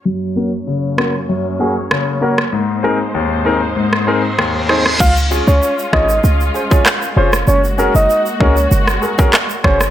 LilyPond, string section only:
\new Staff \with { instrumentName = "String section" } { \time 4/4 \key des \major \tempo 4 = 97 << { <ges, ges des' des''>1 | <aes, aes ees' c''>1 | <des' f'>1 | <bes ges'>1 | } \\ { bes1~ | bes1 | aes1 | aes1 | } >> }